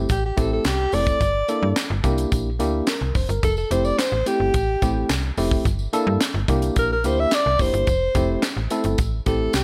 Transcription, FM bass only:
0, 0, Header, 1, 2, 480
1, 0, Start_track
1, 0, Tempo, 555556
1, 1045, Time_signature, 4, 2, 24, 8
1, 8326, End_track
2, 0, Start_track
2, 0, Title_t, "FM bass"
2, 0, Program_c, 0, 39
2, 84, Note_on_c, 0, 33, 101
2, 276, Note_off_c, 0, 33, 0
2, 324, Note_on_c, 0, 33, 94
2, 515, Note_off_c, 0, 33, 0
2, 562, Note_on_c, 0, 36, 86
2, 754, Note_off_c, 0, 36, 0
2, 803, Note_on_c, 0, 29, 93
2, 995, Note_off_c, 0, 29, 0
2, 1042, Note_on_c, 0, 31, 98
2, 1234, Note_off_c, 0, 31, 0
2, 1404, Note_on_c, 0, 43, 109
2, 1500, Note_off_c, 0, 43, 0
2, 1644, Note_on_c, 0, 31, 110
2, 1740, Note_off_c, 0, 31, 0
2, 1761, Note_on_c, 0, 36, 109
2, 1954, Note_off_c, 0, 36, 0
2, 2006, Note_on_c, 0, 34, 86
2, 2244, Note_on_c, 0, 38, 94
2, 2257, Note_off_c, 0, 34, 0
2, 2435, Note_off_c, 0, 38, 0
2, 2604, Note_on_c, 0, 36, 81
2, 2700, Note_off_c, 0, 36, 0
2, 2723, Note_on_c, 0, 29, 82
2, 2819, Note_off_c, 0, 29, 0
2, 2842, Note_on_c, 0, 31, 99
2, 2939, Note_off_c, 0, 31, 0
2, 2964, Note_on_c, 0, 29, 108
2, 3155, Note_off_c, 0, 29, 0
2, 3204, Note_on_c, 0, 29, 104
2, 3395, Note_off_c, 0, 29, 0
2, 3560, Note_on_c, 0, 33, 95
2, 3657, Note_off_c, 0, 33, 0
2, 3801, Note_on_c, 0, 31, 87
2, 3898, Note_off_c, 0, 31, 0
2, 3925, Note_on_c, 0, 33, 94
2, 4116, Note_off_c, 0, 33, 0
2, 4166, Note_on_c, 0, 33, 90
2, 4356, Note_off_c, 0, 33, 0
2, 4403, Note_on_c, 0, 36, 92
2, 4595, Note_off_c, 0, 36, 0
2, 4645, Note_on_c, 0, 29, 88
2, 4835, Note_off_c, 0, 29, 0
2, 4885, Note_on_c, 0, 31, 105
2, 5076, Note_off_c, 0, 31, 0
2, 5243, Note_on_c, 0, 43, 117
2, 5339, Note_off_c, 0, 43, 0
2, 5480, Note_on_c, 0, 31, 109
2, 5577, Note_off_c, 0, 31, 0
2, 5602, Note_on_c, 0, 36, 116
2, 5794, Note_off_c, 0, 36, 0
2, 5845, Note_on_c, 0, 34, 83
2, 6084, Note_on_c, 0, 38, 104
2, 6097, Note_off_c, 0, 34, 0
2, 6275, Note_off_c, 0, 38, 0
2, 6446, Note_on_c, 0, 36, 91
2, 6541, Note_off_c, 0, 36, 0
2, 6561, Note_on_c, 0, 29, 74
2, 6658, Note_off_c, 0, 29, 0
2, 6683, Note_on_c, 0, 31, 100
2, 6779, Note_off_c, 0, 31, 0
2, 6802, Note_on_c, 0, 29, 105
2, 6994, Note_off_c, 0, 29, 0
2, 7041, Note_on_c, 0, 29, 118
2, 7233, Note_off_c, 0, 29, 0
2, 7401, Note_on_c, 0, 33, 91
2, 7498, Note_off_c, 0, 33, 0
2, 7642, Note_on_c, 0, 31, 95
2, 7739, Note_off_c, 0, 31, 0
2, 7763, Note_on_c, 0, 33, 94
2, 7954, Note_off_c, 0, 33, 0
2, 8005, Note_on_c, 0, 33, 87
2, 8196, Note_off_c, 0, 33, 0
2, 8245, Note_on_c, 0, 36, 89
2, 8326, Note_off_c, 0, 36, 0
2, 8326, End_track
0, 0, End_of_file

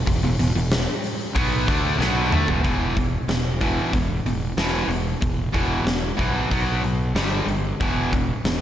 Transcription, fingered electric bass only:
0, 0, Header, 1, 2, 480
1, 0, Start_track
1, 0, Key_signature, 1, "minor"
1, 0, Tempo, 643777
1, 50, Time_signature, 4, 2, 24, 8
1, 6421, End_track
2, 0, Start_track
2, 0, Title_t, "Fingered electric bass"
2, 0, Program_c, 0, 33
2, 51, Note_on_c, 0, 28, 80
2, 162, Note_off_c, 0, 28, 0
2, 174, Note_on_c, 0, 28, 81
2, 283, Note_off_c, 0, 28, 0
2, 294, Note_on_c, 0, 28, 81
2, 403, Note_off_c, 0, 28, 0
2, 418, Note_on_c, 0, 28, 81
2, 637, Note_off_c, 0, 28, 0
2, 1010, Note_on_c, 0, 35, 94
2, 1232, Note_off_c, 0, 35, 0
2, 1248, Note_on_c, 0, 38, 87
2, 1471, Note_off_c, 0, 38, 0
2, 1482, Note_on_c, 0, 35, 100
2, 1707, Note_off_c, 0, 35, 0
2, 1718, Note_on_c, 0, 38, 91
2, 1834, Note_off_c, 0, 38, 0
2, 1849, Note_on_c, 0, 28, 95
2, 1960, Note_off_c, 0, 28, 0
2, 1969, Note_on_c, 0, 28, 89
2, 2351, Note_off_c, 0, 28, 0
2, 2442, Note_on_c, 0, 28, 76
2, 2827, Note_off_c, 0, 28, 0
2, 2936, Note_on_c, 0, 28, 87
2, 3124, Note_off_c, 0, 28, 0
2, 3173, Note_on_c, 0, 28, 74
2, 3362, Note_off_c, 0, 28, 0
2, 3408, Note_on_c, 0, 28, 83
2, 3599, Note_off_c, 0, 28, 0
2, 3636, Note_on_c, 0, 28, 80
2, 3832, Note_off_c, 0, 28, 0
2, 3894, Note_on_c, 0, 28, 86
2, 4083, Note_off_c, 0, 28, 0
2, 4129, Note_on_c, 0, 28, 84
2, 4320, Note_off_c, 0, 28, 0
2, 4360, Note_on_c, 0, 28, 78
2, 4555, Note_off_c, 0, 28, 0
2, 4612, Note_on_c, 0, 35, 88
2, 4802, Note_off_c, 0, 35, 0
2, 4854, Note_on_c, 0, 35, 87
2, 5327, Note_on_c, 0, 31, 89
2, 5338, Note_off_c, 0, 35, 0
2, 5519, Note_off_c, 0, 31, 0
2, 5566, Note_on_c, 0, 31, 70
2, 5759, Note_off_c, 0, 31, 0
2, 5821, Note_on_c, 0, 28, 93
2, 6200, Note_off_c, 0, 28, 0
2, 6292, Note_on_c, 0, 28, 88
2, 6421, Note_off_c, 0, 28, 0
2, 6421, End_track
0, 0, End_of_file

